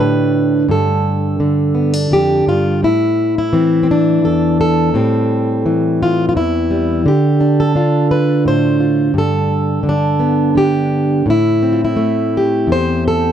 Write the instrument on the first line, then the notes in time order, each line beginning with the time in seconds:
steel-string acoustic guitar
Already playing: D3 D4 G4
0.00 A2 B4
0.69 G2 A4
1.40 D3
1.75 B3
1.94 D4
2.11 F2 G4
2.47 G2 F4
2.83 A2 E4
3.38 E4
3.53 E3 C4
3.83 C4
3.91 D4
4.24 E2 A4
4.61 A4
4.94 A2 G3 C4
5.66 E3
6.03 F4
6.29 F4
6.35 E2 E4
6.71 G3
7.06 D3 G4
7.41 D4
7.60 A4
7.75 D4 F4
8.11 B4
8.45 A2 C5
8.80 F4
9.14 G2
9.18 A4
9.83 D3
9.89 D4
10.20 B3
10.55 D3 G4
11.26 A2
11.30 E4
11.62 C4
11.72 F4
11.85 E4
11.96 A3
12.37 G4
12.67 E2
12.72 C5
13.08 A4